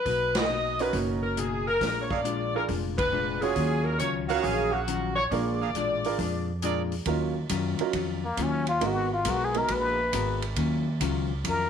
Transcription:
Already playing: B4
0.05 B1 B2 A#3 D#4 F#4, kick, open hi-hat
0.35 D#4 A#4 B4 D#5 F#5, snare, ride
0.49 B2 A#3 D#4 F#4
0.79 C#4 D#4 F#4 A#4 B4, open hi-hat
0.93 F#1 B2 A#3 D#4 F#4, kick, open hi-hat
1.23 A#4
1.37 B2 A#3 D#4 F#4 G#4, closed hi-hat
1.68 A#4
1.80 A#1 A#2 G#3 D4 F4, kick, snare, open hi-hat
2.02 C#5
2.10 D4 G#4 A#4 D5 F5, kick
2.24 A#2 G#3 D4 F4, closed hi-hat
2.55 D4 F4 G#4 A#4
2.68 F1 A#2 G#3 D4 F4, kick, open hi-hat
2.98 B4, kick, ride
3.12 A#2 G#3 D4 F4
3.41 C#4 F4 F#4 G#4 C#5, open hi-hat
3.56 D#2 D#3 F#3 C#4 F4, kick, open hi-hat
3.84 A#4
3.99 C#2 D#3 F#3 C#4 F4 C#5, closed hi-hat
4.28 C#4 D#4 F4 F#4 A#4 C#5 F5, open hi-hat
4.43 A#1 D#3 F#3 C#4 F4 G#4, kick, open hi-hat
4.72 F#4
4.88 D#3 F#3 C#4 F4, closed hi-hat
5.16 C#5
5.31 A#1 A#2 G#3 D4 F4 G#4 A#4 D5, kick, open hi-hat
5.61 D4 G#4 A#4 F5
5.75 A1 A#2 G#3 D4 F4, closed hi-hat
6.04 D4 F4 G#4 A#4, open hi-hat
6.18 F2 A#2 G#3 D4 F4, kick, open hi-hat
6.62 A#2 G#3 D4 F4 G#4 A#4 D5, closed hi-hat
6.92 open hi-hat
7.06 D#2 D#3 F#3 C#4 D#4 F4 A#4, kick, ride
7.49 F#2 D#3 F#3 C#4 F4, kick, hi-hat pedal, ride
7.79 F#3 C#4 D#4 F4 A#4, ride
7.93 F2 D#3 F#3 C#4 F4, kick, ride
8.25 A#3
8.37 D#2 D#3 F#3 C#4 F4, kick, hi-hat pedal, ride
8.43 C#4
8.67 F4, ride
8.81 G#1 G#3 B3 D#4 F#4 A#4, kick, ride
8.87 F#4
9.13 F4
9.25 B1 G#3 B3 F#4 A#4, kick, hi-hat pedal, ride
9.31 F#4
9.44 G#4
9.54 G#3 B3 D#4 F#4 A#4, ride
9.68 A#1 G#3 B3 F#4 A#4, kick, ride
9.72 B4
10.13 G#1 G#3 B3 F#4 A#4, kick, hi-hat pedal, ride
10.42 ride
10.56 D#2 D#3 F#3 C#4 F4, kick, ride
11.00 C#2 D#3 F#3 C#4 F4, kick, hi-hat pedal, ride
11.44 F2 D#3 F#3 C#4 F4, kick, ride
11.49 A#4

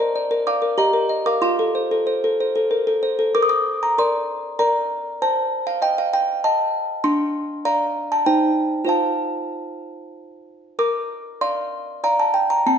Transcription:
Already playing: A#5
0.00 A#4
0.16 D5
0.31 A#4
0.47 D5 F5 D6
0.62 A#4
0.78 G4 D#5 A#5
0.93 A#4
1.09 D#5
1.26 A#4 F5 D6
1.42 F4 F5 C6
1.59 A4
1.75 C5
1.91 A4
2.07 C5
2.24 A4
2.40 C5
2.56 A4
2.71 A#4
2.87 A4
3.03 C5
3.19 A4
3.35 A#4 D6
3.42 D#6
3.49 D6
3.83 A#5
3.98 A#4 D5 C6
4.59 A#4 D5 A#5
5.22 C5 A5
5.67 F5
5.82 D#5 G5
5.98 F5
6.13 G5
6.44 D#5 A5
7.04 D4 C6
7.65 D5 F5 A#5
8.12 A5
8.26 D#4 C5 G5
8.85 F4 C5 F5
8.89 A5
10.79 A#4 D6
11.41 D5 F5 C6
12.04 D5 F5 A#5
12.20 A5
12.34 G5
12.50 A#5
12.66 C4 A5

